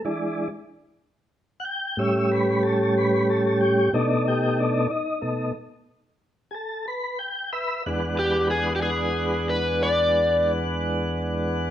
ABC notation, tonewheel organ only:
X:1
M:12/8
L:1/8
Q:3/8=62
K:Emix
V:1 name="Tonewheel organ"
z4 z [f=g] e B A B A =G | D =G D ^D4 z [^GA] B =g [Be] | [E,,G,B,Df]12 |]
V:2 name="Tonewheel organ" clef=bass
[E,G,D] z4 z [A,,=G,C]6 | [B,,A,^D]3 z [B,,A,D] z6 z | z12 |]